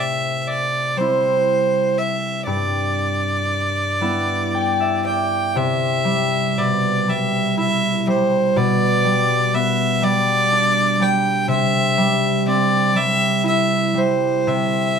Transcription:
0.00 2.52 C3 medium
0.00 1.35 A3 soft
0.00 0.98 C4 soft
0.00 0.65 E4 soft
0.00 0.41 E5 medium
0.41 0.49 E5 medium
0.48 0.99 D5 medium
0.96 2.52 G3 soft
0.96 3.99 C4 soft
0.96 2.00 C5 medium
1.01 3.62 E4 soft
1.98 2.46 E5 medium
2.46 5.62 G2 soft
2.46 5.02 D5 medium
4.01 5.62 G3 soft
4.01 5.62 B3 soft
4.01 6.63 E4 soft
4.54 6.10 G5 soft
4.80 6.52 E5 soft
5.05 6.90 D5 soft
5.05 5.58 G5 medium
5.56 6.63 C3 medium
5.56 6.60 E5 medium
6.05 7.07 G3 soft
6.58 8.55 B2 soft
6.58 7.11 D5 medium
7.08 8.06 G3 soft
7.08 7.59 E5 medium
7.57 10.18 E4 soft
7.57 8.05 E5 medium
8.07 8.62 G3 soft
8.07 8.58 C5 medium
8.56 11.55 B2 medium
8.56 9.56 D5 medium
9.04 10.01 G3 soft
9.54 11.54 B3 soft
9.54 10.05 E5 medium
10.02 10.99 G3 medium
10.02 11.04 D5 medium
10.52 13.32 D4 soft
11.00 11.55 G3 soft
11.00 11.49 G5 medium
11.48 14.46 C3 medium
11.48 12.43 E5 medium
11.98 12.94 G3 soft
12.46 14.99 C4 soft
12.46 12.98 D5 medium
12.95 13.93 G3 medium
12.95 13.46 E5 medium
13.44 14.99 E4 soft
13.44 13.99 E5 medium
13.94 14.52 G3 soft
13.94 14.49 C5 medium
14.47 14.99 C3 medium
14.47 14.99 E5 medium

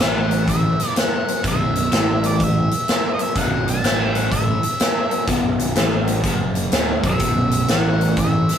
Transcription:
0.00 0.75 A1 medium
0.00 0.78 A2 medium
0.00 0.78 E3 medium
0.00 0.78 A3 medium
0.00 0.48 F#5 medium
0.00 snare loud
0.00 closed hi-hat medium
0.31 closed hi-hat medium
0.48 0.98 E5 medium
0.48 kick loud
0.48 closed hi-hat medium
0.80 snare soft
0.80 closed hi-hat medium
0.96 1.46 F#5 medium
0.96 snare loud
0.96 closed hi-hat medium
1.28 closed hi-hat medium
1.44 1.88 B0 medium
1.44 1.91 B1 medium
1.44 1.92 F#2 medium
1.44 1.92 B2 loud
1.44 2.27 E5 medium
1.44 kick loud
1.44 closed hi-hat medium
1.75 closed hi-hat medium
1.92 2.67 A1 medium
1.92 2.70 A2 medium
1.92 2.70 E3 loud
1.92 2.70 A3 medium
1.92 snare loud
1.92 closed hi-hat medium
2.23 2.40 D5 medium
2.23 closed hi-hat medium
2.40 3.13 E5 medium
2.40 kick loud
2.40 closed hi-hat medium
2.71 closed hi-hat medium
2.88 snare loud
2.88 closed hi-hat medium
3.14 3.20 D#5 medium
3.19 3.38 E5 medium
3.19 closed hi-hat medium
3.36 3.80 B0 medium
3.36 3.84 B1 medium
3.36 3.85 F#2 medium
3.36 3.85 B2 loud
3.36 3.66 F#5 medium
3.36 kick loud
3.36 closed hi-hat medium
3.68 4.17 A5 loud
3.68 closed hi-hat medium
3.82 4.58 A1 medium
3.82 4.62 A2 medium
3.82 4.63 E3 loud
3.82 4.63 A3 loud
3.82 snare loud
3.82 closed hi-hat medium
4.15 4.31 F#5 medium
4.15 closed hi-hat medium
4.32 5.24 E5 medium
4.32 kick medium
4.32 closed hi-hat medium
4.63 closed hi-hat medium
4.80 snare loud
4.80 closed hi-hat medium
5.11 closed hi-hat medium
5.27 5.72 B0 medium
5.27 5.76 B1 medium
5.27 5.76 F#2 medium
5.27 5.76 B2 medium
5.27 kick loud
5.27 closed hi-hat medium
5.59 closed hi-hat medium
5.75 6.21 A1 medium
5.75 6.24 A2 medium
5.75 6.25 E3 medium
5.75 6.25 A3 medium
5.75 snare loud
5.75 closed hi-hat medium
6.07 closed hi-hat medium
6.24 6.69 F#1 medium
6.24 6.72 F#2 medium
6.24 6.73 C#3 medium
6.24 6.73 F#3 medium
6.24 kick loud
6.24 closed hi-hat medium
6.55 closed hi-hat medium
6.72 7.02 D1 medium
6.72 7.03 D2 medium
6.72 7.03 A2 medium
6.72 7.04 D3 medium
6.72 snare loud
6.72 closed hi-hat medium
7.04 7.19 B0 medium
7.04 7.20 B1 medium
7.04 7.20 F#2 medium
7.04 7.20 B2 medium
7.04 7.71 E5 medium
7.04 kick loud
7.04 closed hi-hat medium
7.19 7.65 B0 medium
7.19 7.69 B1 medium
7.19 7.69 F#2 medium
7.19 7.69 B2 medium
7.19 kick loud
7.19 closed hi-hat medium
7.51 closed hi-hat medium
7.68 8.44 A1 medium
7.68 8.48 A2 medium
7.68 8.49 E3 medium
7.68 8.49 A3 medium
7.68 8.19 F#5 medium
7.68 snare loud
7.68 closed hi-hat medium
8.01 closed hi-hat medium
8.17 8.58 E5 medium
8.17 kick medium
8.17 closed hi-hat medium
8.49 snare soft
8.49 closed hi-hat medium

